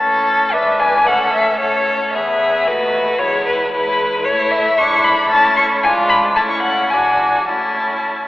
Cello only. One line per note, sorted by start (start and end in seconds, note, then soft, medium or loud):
0.00 0.55 A2 medium
0.54 1.09 G#2 medium
1.08 2.16 A2 medium
2.14 2.67 E2 medium
2.68 3.19 D#2 medium
3.21 4.27 E2 medium
4.26 4.78 A2 medium
4.79 5.33 G#2 loud
5.32 5.86 A2 medium
5.84 6.38 G#2 loud
6.38 6.94 A2 medium
6.93 7.50 E2 medium
7.48 8.28 A2 medium